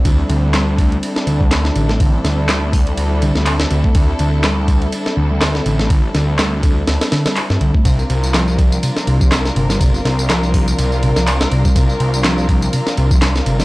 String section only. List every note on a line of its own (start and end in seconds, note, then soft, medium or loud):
0.00 7.81 G3 medium
0.00 7.81 C4 medium
0.00 7.81 D4 medium
0.05 7.81 E4 medium
0.05 7.81 A4 medium
7.85 13.65 G3 medium
7.85 13.65 C4 medium
7.85 13.65 D4 medium
7.85 13.65 F4 medium
7.85 13.65 A#4 medium